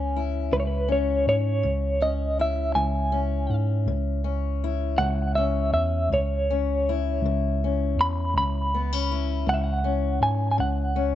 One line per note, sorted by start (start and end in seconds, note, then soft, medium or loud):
0.00 0.48 C#2 medium
0.00 0.88 C#4 soft
0.00 0.56 G#5 medium
0.16 2.39 E4 soft
0.52 1.23 C#2 medium
0.52 1.19 E3 medium
0.52 0.59 B4 medium
0.60 0.66 C#5 medium
0.67 0.91 B4 medium
0.88 2.01 C#4 medium
0.88 1.26 C#5 medium
1.27 1.62 G#2 medium
1.27 2.04 C#5 medium
1.63 2.72 C#2 medium
1.63 2.31 C#3 medium
2.01 3.12 C#4 medium
2.01 2.40 D#5 medium
2.39 4.63 E4 medium
2.39 2.75 E5 medium
2.75 3.46 C#2 medium
2.75 3.43 E3 medium
2.75 3.55 G#5 medium
3.12 4.24 C#4 medium
3.50 3.85 G#2 medium
3.87 4.95 C#2 medium
3.87 4.55 C#3 medium
4.24 5.37 C#4 soft
4.64 6.89 E4 medium
4.98 5.70 C#2 medium
4.98 5.67 E3 medium
4.98 5.33 F#5 medium
5.35 6.50 C#4 medium
5.35 5.72 E5 medium
5.72 6.09 E2 medium
5.72 6.08 E5 medium
6.10 7.18 C#2 medium
6.10 6.79 C#3 medium
6.10 7.20 C#5 medium
6.50 7.64 C#4 medium
6.89 9.11 E4 medium
7.21 7.93 C#2 medium
7.25 7.91 E3 medium
7.64 8.74 C#4 soft
7.96 8.32 E2 medium
8.01 8.36 B5 medium
8.34 9.42 C#2 medium
8.34 9.04 C#3 medium
8.34 9.49 B5 medium
8.74 8.93 B3 soft
8.93 9.83 C#4 soft
9.12 11.15 E4 medium
9.46 10.17 C#2 medium
9.46 10.14 E3 medium
9.46 9.55 F#5 medium
9.54 9.61 E5 medium
9.64 10.22 F#5 medium
9.84 10.96 C#4 medium
10.21 10.57 G#2 medium
10.21 10.50 G#5 medium
10.51 10.59 G#5 medium
10.58 11.15 C#2 medium
10.58 11.15 C#3 medium
10.58 11.15 F#5 medium
10.96 11.15 C#4 soft